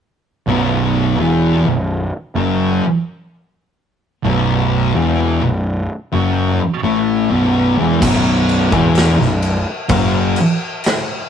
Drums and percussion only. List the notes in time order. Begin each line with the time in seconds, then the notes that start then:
8.02 kick, crash
8.49 crash
8.72 kick
8.95 snare, crash
9.21 snare
9.42 crash
9.89 kick, crash
10.36 crash
10.84 snare, crash